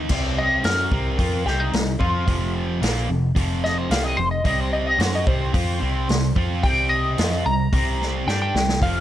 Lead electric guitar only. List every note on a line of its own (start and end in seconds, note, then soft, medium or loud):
0.38 0.64 D#5 medium
0.65 1.44 A#4 medium
1.46 1.59 G4 medium
1.60 1.99 D#4 medium
1.99 2.53 F4 medium
3.64 3.78 D#5 medium
3.78 3.91 C5 loud
3.91 4.04 F5 medium
4.04 4.17 D#5 medium
4.17 4.31 C5 medium
4.31 4.45 D#5 medium
4.46 4.60 D#5 medium
4.60 4.73 C5 medium
4.73 4.86 D#5 medium
4.87 5.01 D#5 medium
5.01 5.14 C5 medium
5.15 5.27 D#5 medium
5.27 6.33 C5 medium
6.63 6.90 G5 medium
6.89 7.43 D#5 medium
7.46 8.25 A#5 medium
8.28 8.40 G5 medium
8.42 8.81 G5 medium
8.83 9.00 F5 medium